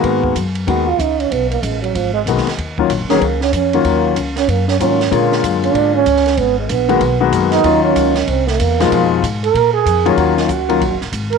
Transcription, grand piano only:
X:1
M:4/4
L:1/8
Q:"Swing" 1/4=190
K:Ebm
V:1 name="Grand piano"
[E,A,B,CG]2 z2 [E,A,B,CG] z3 | z6 [E,A,B,CG] z | z [E,G,B,DF] z [E,G,B,DA] z3 [E,G,B,DF]- | [E,G,B,DF]2 z4 [E,G,B,DF] z |
[=D,A,B,F^c]4- [D,A,B,Fc] z3 | z3 [E,A,B,CG] z [E,A,B,CG]3 | [E,G,B,DF]3 z4 [C,F,A,EF]- | [C,F,A,EF]2 z4 z [E,G,B,DF]- |
[E,G,B,DF]2 z [E,G,B,DF] z4 |]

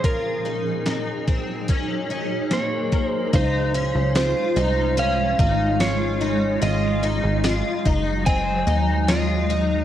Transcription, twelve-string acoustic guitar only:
X:1
M:4/4
L:1/8
Q:1/4=73
K:Db
V:1 name="Twelve-string acoustic guitar"
F E E C D D B, B, | E D F E D E F E | F E F E C E F E |]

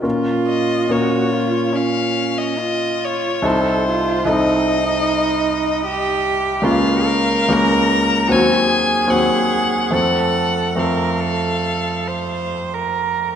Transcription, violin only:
X:1
M:4/4
L:1/16
Q:1/4=71
K:Bbm
V:1 name="Violin"
z2 e2 d4 f3 e3 d2 | c4 e8- e2 z2 | f4 b4 a4 g4 | g4 f8 z4 |]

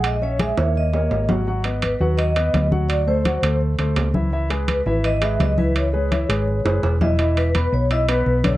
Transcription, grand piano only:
X:1
M:4/4
L:1/8
Q:1/4=168
K:C#m
V:1 name="Grand piano"
[G,Gg] [Cce] [G,Gg] [^A,^Ac]2 [A,Ac]2 [F,Ff] | [F,Ff] [B,Bd]2 [F,Ff]2 [B,Bd]2 [F,Ff]- | [F,Ff] [A,A=c] [F,Ff] [A,Ac]2 [A,Ac]2 [E,Ee] | [E,Ee] [G,GB]2 [E,Ee]2 [G,GB]2 [E,Ee]- |
[E,Ee] [G,GB] [E,Ee] [G,GB]2 [G,GB]2 [E,Ee] | [E,Ee]2 [B,Bb]2 [Eee'] [B,Bb]2 [=D,=D=d] |]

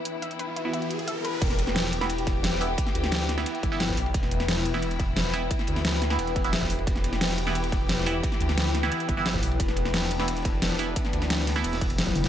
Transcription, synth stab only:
X:1
M:4/4
L:1/16
Q:1/4=176
K:Em
V:1 name="Synth stab"
z6 z [E,B,E]4 z4 z | z6 z [E,B,E] z6 [E,B,E] z | z6 z [E,B,E]4 [E,B,E] z4 | z6 z [E,B,E] z6 [E,B,E] z |
z6 z [E,B,E]4 [E,B,E] z4 | z6 z [E,B,E] z6 [E,B,E] z | z6 z [E,B,E]4 [E,B,E] z4 | z6 z [E,B,E] z6 [E,B,E] z |
z6 z [E,B,E]4 z4 z |]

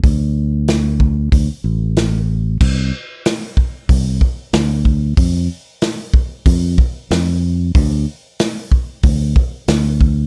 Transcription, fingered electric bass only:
X:1
M:4/4
L:1/16
Q:1/4=93
K:Clyd
V:1 name="Fingered electric bass" clef=bass
D,,8 D,, z A,,,6 | C,,2 z6 C,,2 z2 D,,4 | =F,,2 z6 F,,2 z2 F,,4 | D,,2 z6 D,,2 z2 D,,4 |]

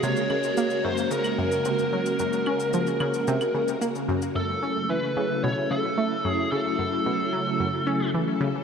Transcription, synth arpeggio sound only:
X:1
M:4/4
L:1/8
Q:1/4=111
K:Gblyd
V:1 name="Synth arpeggio sound" clef=bass
C, D, B, G,, D, G,, C, G, | G,, D F, D, C, D, B, G,, | [K:F#m] F,, C E, C, B,, C, A, F,, | C, F,, B,, F, F,, C E, C, |]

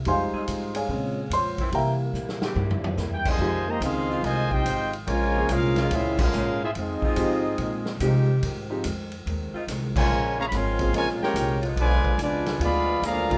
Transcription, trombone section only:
X:1
M:4/4
L:1/8
Q:"Swing" 1/4=143
K:Cphr
V:1 name="Trombone section" clef=bass
z8 | z6 z [C,E,A,]- | [K:Fm] [C,E,A,] B, [E,A,C]2 [C,E,A,] [CEG]2 z | [D,F,A,]2 [A,DF]2 =E [A,DF]2 E |
[A,CE]6 z2 | z6 z [D,F,A,]- | [D,F,A,] [D,F,B,] [F,A,C]2 [D,F,A,] [A,DG]2 z | [=D,F,^G,]2 [F,G,=D]2 [F,G,=B,]2 [D,F,_B,]2 |]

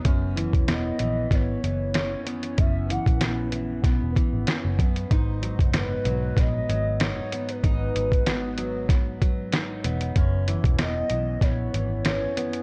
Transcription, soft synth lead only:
X:1
M:4/4
L:1/16
Q:"Swing 16ths" 1/4=95
K:F#mix
V:1 name="Soft synth lead"
z4 d4 c4 c4 | e2 f4 z8 z2 | z4 B4 d4 c3 B- | B8- B3 z4 z |
z4 d4 c4 c4 |]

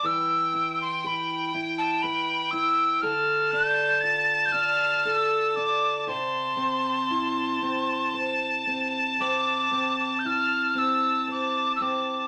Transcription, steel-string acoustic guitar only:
X:1
M:3/4
L:1/8
Q:1/4=58
K:C
V:1 name="Steel-string acoustic guitar"
[E,B] E G E B E | [D,A] D F D A D | [C,c] C E C c C | [C,c] C E C c C |]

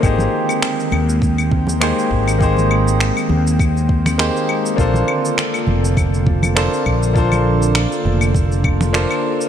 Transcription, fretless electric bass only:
X:1
M:4/4
L:1/8
Q:"Swing 16ths" 1/4=101
K:Bb
V:1 name="Fretless electric bass" clef=bass
_A,,, z2 E,,3 z A,,,- | _A,,,2 z E,,3 z2 | B,,, z2 F,,,3 z B,,,- | B,,,2 z F,,,3 z2 |]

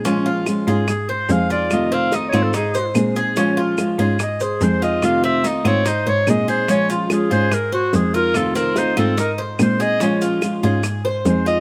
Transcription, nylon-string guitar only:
X:1
M:4/4
L:1/8
Q:1/4=145
K:Bbm
V:1 name="Nylon-string guitar"
[F,A,DF]2 [F,A,DF] [A,DF] z2 [A,CEA]2 | [C,E,=A,CF]2 [E,A,CF] [E,A,CF] z2 [_A,CEA]2 | [F,A,DF]2 [F,A,DF] [A,DF] z2 [A,CEA]2 | [C,E,=A,CF]2 [E,A,CF] [E,A,CF] z2 [_A,CEA]2 |
[F,A,DF]2 [F,A,DF] [A,DF] z2 [A,CEA]2 | [C,E,=A,CF]2 [E,A,CF] [E,A,CF] z2 [_A,CEA]2 | [F,A,DF]2 [F,A,DF] [A,DF] z2 [A,CEA]2 |]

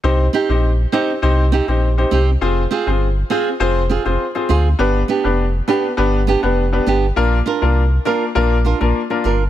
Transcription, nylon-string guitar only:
X:1
M:4/4
L:1/8
Q:1/4=101
K:Cm
V:1 name="Nylon-string guitar"
z [CEG] z [CEG] z [CEG] z [CEG] | z [CFA] z [CFA] z [CFA] z [CFA] | z [=B,DG] z [B,DG] z [B,DG] z [B,DG] | z [DFB] z [DFB] z [DFB] z [DFB] |]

